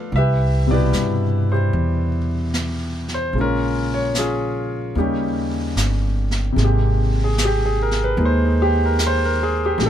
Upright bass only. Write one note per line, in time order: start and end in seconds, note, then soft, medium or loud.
0.12 0.89 C2 medium
0.92 1.69 G2 medium
1.73 3.30 E2 medium
3.33 4.91 A#1 medium
4.95 5.72 D#2 medium
5.76 6.53 G1 medium
6.56 8.13 G#1 medium
8.17 9.74 D#2 medium
9.78 9.90 A1 medium